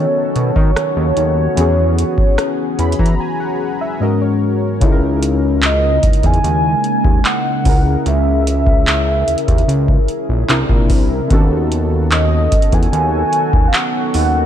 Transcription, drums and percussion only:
0.36 closed hi-hat soft
0.56 kick medium
0.76 cross-stick loud
0.76 closed hi-hat medium
1.17 closed hi-hat medium
1.57 closed hi-hat medium
1.99 closed hi-hat medium
2.18 kick medium
2.38 cross-stick loud
2.38 closed hi-hat medium
2.79 closed hi-hat medium
2.92 closed hi-hat medium
2.99 kick medium
3.06 closed hi-hat medium
4.81 kick loud
4.81 closed hi-hat medium
5.23 closed hi-hat medium
5.62 clap loud
5.62 closed hi-hat medium
6.03 kick loud
6.03 closed hi-hat medium
6.13 closed hi-hat medium
6.23 kick medium
6.23 closed hi-hat soft
6.34 closed hi-hat soft
6.44 closed hi-hat medium
6.84 closed hi-hat soft
7.05 kick medium
7.25 clap loud
7.25 closed hi-hat medium
7.65 kick loud
7.65 open hi-hat medium
8.06 closed hi-hat medium
8.47 closed hi-hat medium
8.67 kick loud
8.87 clap loud
8.87 closed hi-hat medium
9.28 closed hi-hat medium
9.38 closed hi-hat medium
9.48 kick medium
9.48 closed hi-hat soft
9.58 closed hi-hat soft
9.69 closed hi-hat medium
9.88 kick medium
10.08 closed hi-hat soft
10.49 clap loud
10.49 closed hi-hat medium
10.69 kick medium
10.90 kick medium
10.90 open hi-hat medium
11.30 kick loud
11.30 closed hi-hat medium
11.72 closed hi-hat medium
12.11 clap loud
12.11 closed hi-hat medium
12.52 kick loud
12.52 closed hi-hat medium
12.62 closed hi-hat medium
12.72 kick medium
12.72 closed hi-hat soft
12.83 closed hi-hat soft
12.93 closed hi-hat medium
13.33 closed hi-hat medium
13.53 kick medium
13.74 clap loud
13.74 closed hi-hat medium
14.14 open hi-hat medium

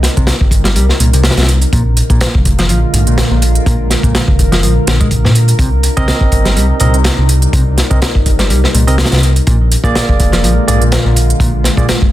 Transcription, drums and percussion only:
0.03 snare medium
0.03 closed hi-hat medium
0.17 kick loud
0.17 closed hi-hat soft
0.27 snare loud
0.27 closed hi-hat medium
0.27 closed hi-hat soft
0.41 kick medium
0.51 kick loud
0.51 closed hi-hat medium
0.64 snare soft
0.64 closed hi-hat soft
0.76 closed hi-hat medium
0.76 closed hi-hat soft
0.89 snare soft
1.00 closed hi-hat medium
1.13 closed hi-hat soft
1.24 snare medium
1.24 closed hi-hat medium
1.24 closed hi-hat soft
1.31 snare medium
1.31 closed hi-hat medium
1.37 snare medium
1.37 closed hi-hat medium
1.43 snare medium
1.43 closed hi-hat medium
1.49 closed hi-hat medium
1.61 closed hi-hat soft
1.73 kick loud
1.73 closed hi-hat soft
1.73 closed hi-hat medium
1.97 closed hi-hat medium
2.10 kick medium
2.10 closed hi-hat soft
2.21 snare loud
2.21 closed hi-hat medium
2.21 closed hi-hat soft
2.35 kick medium
2.45 kick loud
2.45 closed hi-hat medium
2.59 snare soft
2.59 closed hi-hat soft
2.69 closed hi-hat medium
2.69 closed hi-hat soft
2.94 closed hi-hat medium
3.07 closed hi-hat soft
3.18 snare loud
3.18 closed hi-hat medium
3.18 closed hi-hat soft
3.42 closed hi-hat medium
3.55 closed hi-hat soft
3.66 kick loud
3.66 closed hi-hat soft
3.66 closed hi-hat medium
3.90 snare soft
3.90 closed hi-hat medium
4.03 kick loud
4.03 closed hi-hat soft
4.15 snare loud
4.15 closed hi-hat medium
4.15 closed hi-hat soft
4.28 kick medium
4.39 kick medium
4.39 closed hi-hat medium
4.52 snare medium
4.52 closed hi-hat soft
4.63 closed hi-hat medium
4.63 closed hi-hat soft
4.87 snare loud
4.87 closed hi-hat medium
5.01 kick medium
5.01 closed hi-hat soft
5.11 kick medium
5.11 closed hi-hat medium
5.11 closed hi-hat soft
5.25 snare soft
5.35 closed hi-hat medium
5.48 closed hi-hat soft
5.59 kick loud
5.59 closed hi-hat medium
5.59 closed hi-hat soft
5.83 closed hi-hat medium
5.97 kick medium
5.97 closed hi-hat soft
6.08 snare loud
6.08 closed hi-hat medium
6.08 closed hi-hat soft
6.21 kick medium
6.32 kick medium
6.32 closed hi-hat medium
6.45 snare soft
6.45 closed hi-hat soft
6.57 closed hi-hat soft
6.57 closed hi-hat medium
6.80 closed hi-hat medium
6.94 closed hi-hat soft
7.04 snare loud
7.04 closed hi-hat medium
7.04 closed hi-hat soft
7.29 closed hi-hat medium
7.42 closed hi-hat soft
7.53 kick loud
7.53 closed hi-hat soft
7.53 closed hi-hat medium
7.78 snare medium
7.78 closed hi-hat medium
7.91 kick loud
7.91 closed hi-hat soft
8.02 snare loud
8.02 closed hi-hat medium
8.02 closed hi-hat soft
8.15 kick medium
8.26 kick medium
8.26 closed hi-hat medium
8.39 snare medium
8.39 closed hi-hat soft
8.50 closed hi-hat soft
8.50 closed hi-hat medium
8.64 snare soft
8.75 closed hi-hat medium
8.88 closed hi-hat soft
8.98 snare medium
8.98 closed hi-hat soft
8.98 closed hi-hat medium
9.05 snare loud
9.05 closed hi-hat medium
9.12 snare medium
9.12 closed hi-hat medium
9.17 snare medium
9.17 closed hi-hat medium
9.23 closed hi-hat medium
9.36 closed hi-hat soft
9.47 kick loud
9.47 closed hi-hat medium
9.47 closed hi-hat soft
9.72 closed hi-hat medium
9.84 kick loud
9.84 closed hi-hat soft
9.95 snare loud
9.95 closed hi-hat soft
9.95 closed hi-hat medium
10.09 kick medium
10.20 kick loud
10.20 closed hi-hat medium
10.32 snare soft
10.32 closed hi-hat soft
10.44 closed hi-hat medium
10.44 closed hi-hat soft
10.68 closed hi-hat medium
10.82 closed hi-hat soft
10.92 snare loud
10.92 closed hi-hat medium
10.92 closed hi-hat soft
11.16 closed hi-hat medium
11.30 closed hi-hat soft
11.40 kick loud
11.40 closed hi-hat medium
11.40 closed hi-hat soft
11.64 snare soft
11.64 closed hi-hat medium
11.77 kick loud
11.77 closed hi-hat soft
11.89 snare loud
11.89 closed hi-hat medium
11.89 closed hi-hat soft
12.02 kick medium

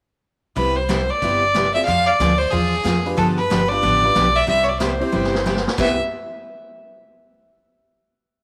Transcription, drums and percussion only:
0.56 kick soft
0.56 open hi-hat soft
0.89 snare medium
0.89 closed hi-hat soft
1.22 kick soft
1.22 open hi-hat soft
1.55 snare medium
1.55 closed hi-hat soft
1.75 open hi-hat soft
1.87 kick soft
1.87 open hi-hat soft
2.20 snare medium
2.20 closed hi-hat medium
2.41 open hi-hat soft
2.53 kick soft
2.53 open hi-hat soft
2.85 snare medium
2.85 closed hi-hat medium
3.06 open hi-hat soft
3.18 kick soft
3.18 open hi-hat soft
3.51 snare medium
3.51 closed hi-hat medium
3.71 open hi-hat soft
3.83 kick soft
3.83 open hi-hat soft
4.15 snare medium
4.15 closed hi-hat soft
4.48 kick soft
4.48 open hi-hat soft
4.80 snare medium
4.80 closed hi-hat medium
5.01 open hi-hat soft
5.24 snare soft
5.35 snare medium
5.46 snare medium
5.57 snare medium
5.68 snare medium
5.78 kick medium
5.78 snare medium
5.78 crash medium

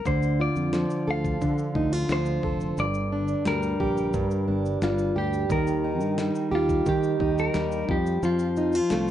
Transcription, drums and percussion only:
0.06 kick loud
0.06 shaker medium
0.23 shaker soft
0.56 shaker soft
0.73 snare loud
0.73 shaker medium
0.90 shaker soft
1.24 kick medium
1.24 shaker soft
1.42 kick medium
1.42 shaker medium
1.58 shaker soft
1.75 kick medium
1.93 shaker soft
2.09 snare loud
2.09 shaker medium
2.26 shaker medium
2.43 kick medium
2.61 shaker soft
2.78 shaker medium
2.94 shaker medium
3.28 shaker soft
3.45 snare loud
3.45 shaker medium
3.63 shaker soft
3.80 kick medium
3.97 shaker soft
4.14 kick medium
4.14 shaker medium
4.31 shaker soft
4.66 shaker soft
4.82 snare loud
4.82 shaker medium
4.98 shaker soft
5.33 shaker medium
5.50 kick loud
5.50 shaker medium
5.67 shaker medium
6.01 shaker soft
6.18 snare loud
6.18 shaker medium
6.35 shaker medium
6.69 kick medium
6.69 shaker medium
6.86 kick medium
6.86 shaker medium
7.03 shaker soft
7.20 kick medium
7.38 shaker soft
7.54 snare loud
7.54 shaker medium
7.72 shaker medium
7.89 kick loud
8.06 shaker medium
8.23 shaker medium
8.39 shaker medium
8.57 shaker medium
8.73 shaker soft
8.90 snare loud
8.90 shaker medium

